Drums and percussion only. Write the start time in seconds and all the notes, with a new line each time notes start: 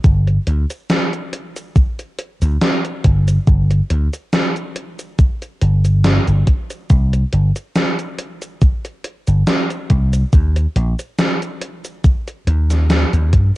0.04 kick, closed hi-hat, cabasa
0.27 closed hi-hat, cabasa
0.47 closed hi-hat
0.70 closed hi-hat, cabasa
0.90 snare, closed hi-hat, cabasa
1.13 closed hi-hat, cabasa
1.33 closed hi-hat
1.56 closed hi-hat, cabasa
1.76 kick, closed hi-hat, cabasa
1.99 closed hi-hat, cabasa
2.19 closed hi-hat
2.42 closed hi-hat, cabasa
2.62 snare, closed hi-hat, cabasa
2.85 closed hi-hat, cabasa
3.04 kick, closed hi-hat
3.28 closed hi-hat, cabasa
3.47 kick, closed hi-hat, cabasa
3.71 closed hi-hat, cabasa
3.90 closed hi-hat
4.13 closed hi-hat, cabasa
4.33 snare, closed hi-hat, cabasa
4.56 closed hi-hat, cabasa
4.76 closed hi-hat
4.99 closed hi-hat, cabasa
5.19 kick, closed hi-hat, cabasa
5.42 closed hi-hat, cabasa
5.61 closed hi-hat
5.85 closed hi-hat, cabasa
6.04 snare, closed hi-hat, cabasa
6.28 closed hi-hat, cabasa
6.47 kick, closed hi-hat
6.70 closed hi-hat, cabasa
6.90 kick, closed hi-hat, cabasa
7.13 closed hi-hat, cabasa
7.33 closed hi-hat
7.56 closed hi-hat, cabasa
7.76 snare, closed hi-hat, cabasa
7.99 closed hi-hat, cabasa
8.18 closed hi-hat
8.42 closed hi-hat, cabasa
8.61 kick, closed hi-hat, cabasa
8.85 closed hi-hat, cabasa
9.04 closed hi-hat
9.27 closed hi-hat, cabasa
9.47 snare, closed hi-hat, cabasa
9.70 closed hi-hat, cabasa
9.90 kick, closed hi-hat
10.13 closed hi-hat, cabasa
10.33 kick, closed hi-hat, cabasa
10.56 closed hi-hat, cabasa
10.76 closed hi-hat
10.99 closed hi-hat, cabasa
11.19 snare, closed hi-hat, cabasa
11.42 closed hi-hat, cabasa
11.62 closed hi-hat
11.85 closed hi-hat, cabasa
12.04 kick, closed hi-hat, cabasa
12.28 closed hi-hat, cabasa
12.47 closed hi-hat
12.70 snare, closed hi-hat, cabasa
12.90 snare, closed hi-hat, cabasa
13.13 closed hi-hat, cabasa
13.33 kick, closed hi-hat